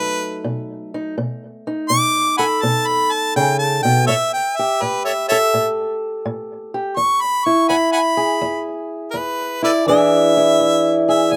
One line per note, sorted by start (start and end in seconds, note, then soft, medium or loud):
0.00 0.39 B2 medium
0.00 1.15 F#3 medium
0.00 4.09 A3 medium
0.00 0.93 D#4 medium
0.00 1.21 A4 medium
0.00 0.42 B4 loud
0.44 1.12 B2 medium
0.94 1.15 D#4 medium
1.18 1.85 B2 medium
1.67 4.06 D#4 medium
1.89 2.58 B2 medium
1.89 2.36 D6 loud
2.38 4.05 A4 medium
2.38 2.44 F#5 medium
2.38 2.46 G#5 medium
2.38 2.63 B5 medium
2.62 3.31 B2 medium
2.62 2.88 A5 loud
2.87 3.14 B5 loud
3.12 3.35 A5 loud
3.36 3.84 C#3 medium
3.36 3.58 G5 loud
3.59 3.82 A5 medium
3.83 4.08 B2 medium
3.83 4.06 G5 loud
4.07 4.76 A2 medium
4.07 4.15 A4 medium
4.07 4.14 C#5 medium
4.07 4.31 E5 loud
4.33 4.58 G5 medium
4.56 6.73 G4 medium
4.56 4.83 E5 medium
4.82 5.49 A2 medium
4.82 5.05 B4 medium
5.05 5.12 A4 medium
5.05 5.12 C#5 medium
5.05 5.28 E5 medium
5.29 5.37 A4 medium
5.29 6.96 A4 medium
5.29 5.36 C#5 medium
5.29 5.68 E5 loud
5.54 6.21 A2 medium
6.25 6.93 A2 medium
6.74 6.95 G4 medium
6.96 7.65 E2 medium
6.96 7.23 C#6 loud
7.21 7.47 B5 loud
7.45 9.61 E4 medium
7.45 7.68 C#6 medium
7.69 8.37 E2 medium
7.69 7.76 F#5 medium
7.69 7.75 G#5 medium
7.69 7.92 B5 medium
7.93 7.99 F#5 medium
7.93 8.01 G#5 medium
7.93 8.64 B5 loud
8.17 9.84 G#4 medium
8.41 9.10 E2 medium
9.11 9.82 E2 medium
9.11 9.16 A#4 medium
9.11 9.63 B4 medium
9.62 9.84 E4 medium
9.62 9.72 A4 medium
9.62 9.71 B4 medium
9.62 9.86 D5 medium
9.86 10.54 E2 medium
9.86 11.37 E3 medium
9.86 11.37 D4 medium
9.86 10.37 E4 medium
9.86 11.08 G#4 medium
9.86 11.04 E5 medium
10.37 11.37 E4 medium
10.60 11.27 E2 medium
11.09 11.37 G#4 medium
11.09 11.34 E5 medium
11.32 11.37 E2 medium
11.32 11.37 G#5 loud